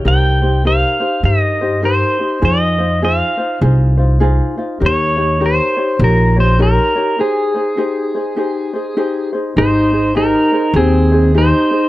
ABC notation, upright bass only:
X:1
M:4/4
L:1/8
Q:"Swing" 1/4=101
K:Ab
V:1 name="Upright bass" clef=bass
C,,4 G,,4 | F,,4 C,,4 | E,,4 B,,,4 | z8 |
A,,,4 E,,4 |]